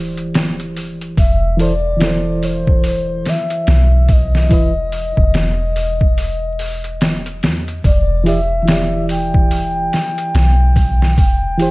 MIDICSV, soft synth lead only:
0, 0, Header, 1, 2, 480
1, 0, Start_track
1, 0, Key_signature, 1, "minor"
1, 0, Tempo, 833333
1, 676, Time_signature, 4, 2, 24, 8
1, 6744, End_track
2, 0, Start_track
2, 0, Title_t, "Soft synth lead"
2, 0, Program_c, 0, 80
2, 682, Note_on_c, 0, 76, 111
2, 903, Note_off_c, 0, 76, 0
2, 924, Note_on_c, 0, 74, 108
2, 1409, Note_on_c, 0, 72, 96
2, 1418, Note_off_c, 0, 74, 0
2, 1643, Note_off_c, 0, 72, 0
2, 1650, Note_on_c, 0, 72, 94
2, 1892, Note_on_c, 0, 76, 116
2, 1901, Note_off_c, 0, 72, 0
2, 2373, Note_on_c, 0, 75, 110
2, 2381, Note_off_c, 0, 76, 0
2, 4285, Note_off_c, 0, 75, 0
2, 4524, Note_on_c, 0, 74, 100
2, 4744, Note_off_c, 0, 74, 0
2, 4763, Note_on_c, 0, 76, 115
2, 5217, Note_off_c, 0, 76, 0
2, 5245, Note_on_c, 0, 79, 127
2, 6418, Note_off_c, 0, 79, 0
2, 6443, Note_on_c, 0, 79, 114
2, 6744, Note_off_c, 0, 79, 0
2, 6744, End_track
0, 0, End_of_file